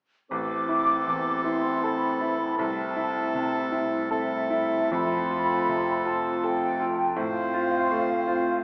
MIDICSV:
0, 0, Header, 1, 7, 480
1, 0, Start_track
1, 0, Key_signature, 0, "minor"
1, 0, Tempo, 762389
1, 191, Time_signature, 3, 2, 24, 8
1, 2587, Tempo, 817439
1, 3067, Tempo, 763359
1, 3547, Tempo, 743494
1, 5450, End_track
2, 0, Start_track
2, 0, Title_t, "Flute section"
2, 0, Program_c, 0, 73
2, 190, Note_on_c, 0, 86, 64
2, 888, Note_off_c, 0, 86, 0
2, 913, Note_on_c, 0, 84, 47
2, 1148, Note_on_c, 0, 83, 60
2, 1152, Note_off_c, 0, 84, 0
2, 1627, Note_off_c, 0, 83, 0
2, 1631, Note_on_c, 0, 81, 62
2, 2395, Note_off_c, 0, 81, 0
2, 2589, Note_on_c, 0, 76, 59
2, 3058, Note_off_c, 0, 76, 0
2, 3064, Note_on_c, 0, 83, 67
2, 3785, Note_off_c, 0, 83, 0
2, 3786, Note_on_c, 0, 81, 52
2, 4029, Note_off_c, 0, 81, 0
2, 4031, Note_on_c, 0, 79, 64
2, 4499, Note_on_c, 0, 77, 78
2, 4509, Note_off_c, 0, 79, 0
2, 5444, Note_off_c, 0, 77, 0
2, 5450, End_track
3, 0, Start_track
3, 0, Title_t, "Oboe"
3, 0, Program_c, 1, 68
3, 196, Note_on_c, 1, 69, 37
3, 1606, Note_off_c, 1, 69, 0
3, 1624, Note_on_c, 1, 69, 43
3, 2566, Note_off_c, 1, 69, 0
3, 2590, Note_on_c, 1, 69, 41
3, 3059, Note_off_c, 1, 69, 0
3, 3065, Note_on_c, 1, 69, 43
3, 4309, Note_off_c, 1, 69, 0
3, 4509, Note_on_c, 1, 72, 45
3, 5442, Note_off_c, 1, 72, 0
3, 5450, End_track
4, 0, Start_track
4, 0, Title_t, "Clarinet"
4, 0, Program_c, 2, 71
4, 199, Note_on_c, 2, 64, 36
4, 1607, Note_off_c, 2, 64, 0
4, 1633, Note_on_c, 2, 64, 36
4, 2571, Note_off_c, 2, 64, 0
4, 2587, Note_on_c, 2, 64, 39
4, 3060, Note_on_c, 2, 65, 42
4, 3069, Note_off_c, 2, 64, 0
4, 4332, Note_off_c, 2, 65, 0
4, 4505, Note_on_c, 2, 65, 48
4, 5440, Note_off_c, 2, 65, 0
4, 5450, End_track
5, 0, Start_track
5, 0, Title_t, "Grand piano"
5, 0, Program_c, 3, 0
5, 196, Note_on_c, 3, 33, 42
5, 325, Control_c, 3, 64, 127
5, 431, Note_on_c, 3, 64, 34
5, 674, Note_on_c, 3, 40, 34
5, 816, Note_off_c, 3, 64, 0
5, 908, Note_on_c, 3, 64, 35
5, 1056, Note_off_c, 3, 40, 0
5, 1155, Note_on_c, 3, 69, 34
5, 1292, Note_off_c, 3, 64, 0
5, 1388, Note_on_c, 3, 64, 35
5, 1535, Note_off_c, 3, 69, 0
5, 1606, Note_off_c, 3, 33, 0
5, 1628, Note_off_c, 3, 64, 0
5, 1631, Note_on_c, 3, 36, 40
5, 1641, Control_c, 3, 64, 0
5, 1746, Control_c, 3, 64, 127
5, 1864, Note_on_c, 3, 64, 36
5, 2106, Note_on_c, 3, 48, 35
5, 2248, Note_off_c, 3, 64, 0
5, 2341, Note_on_c, 3, 64, 38
5, 2490, Note_off_c, 3, 48, 0
5, 2585, Note_on_c, 3, 69, 36
5, 2726, Note_off_c, 3, 64, 0
5, 2818, Note_on_c, 3, 64, 36
5, 2971, Note_off_c, 3, 69, 0
5, 3045, Note_off_c, 3, 36, 0
5, 3060, Note_on_c, 3, 41, 47
5, 3063, Note_off_c, 3, 64, 0
5, 3079, Control_c, 3, 64, 0
5, 3188, Control_c, 3, 64, 127
5, 3303, Note_on_c, 3, 65, 39
5, 3544, Note_on_c, 3, 48, 37
5, 3686, Note_off_c, 3, 65, 0
5, 3782, Note_on_c, 3, 65, 38
5, 3931, Note_off_c, 3, 48, 0
5, 4029, Note_on_c, 3, 69, 42
5, 4173, Note_off_c, 3, 65, 0
5, 4262, Note_on_c, 3, 65, 39
5, 4413, Note_off_c, 3, 69, 0
5, 4479, Note_off_c, 3, 41, 0
5, 4498, Note_on_c, 3, 45, 48
5, 4504, Note_off_c, 3, 65, 0
5, 4519, Control_c, 3, 64, 0
5, 4637, Control_c, 3, 64, 127
5, 4740, Note_on_c, 3, 65, 43
5, 4980, Note_on_c, 3, 57, 44
5, 5126, Note_off_c, 3, 65, 0
5, 5216, Note_on_c, 3, 65, 39
5, 5368, Note_off_c, 3, 57, 0
5, 5450, Note_off_c, 3, 45, 0
5, 5450, Note_off_c, 3, 65, 0
5, 5450, End_track
6, 0, Start_track
6, 0, Title_t, "Bassoon"
6, 0, Program_c, 4, 70
6, 190, Note_on_c, 4, 60, 41
6, 1603, Note_off_c, 4, 60, 0
6, 1629, Note_on_c, 4, 60, 41
6, 2569, Note_off_c, 4, 60, 0
6, 2587, Note_on_c, 4, 60, 37
6, 3057, Note_off_c, 4, 60, 0
6, 3063, Note_on_c, 4, 60, 44
6, 4308, Note_off_c, 4, 60, 0
6, 4505, Note_on_c, 4, 60, 51
6, 5440, Note_off_c, 4, 60, 0
6, 5450, End_track
7, 0, Start_track
7, 0, Title_t, "French horn section"
7, 0, Program_c, 5, 60
7, 195, Note_on_c, 5, 60, 40
7, 196, Note_on_c, 5, 64, 39
7, 1605, Note_off_c, 5, 60, 0
7, 1630, Note_on_c, 5, 57, 41
7, 3046, Note_off_c, 5, 64, 0
7, 3071, Note_on_c, 5, 65, 45
7, 4401, Note_off_c, 5, 57, 0
7, 4511, Note_on_c, 5, 60, 48
7, 5450, Note_off_c, 5, 60, 0
7, 5450, Note_off_c, 5, 65, 0
7, 5450, End_track
0, 0, End_of_file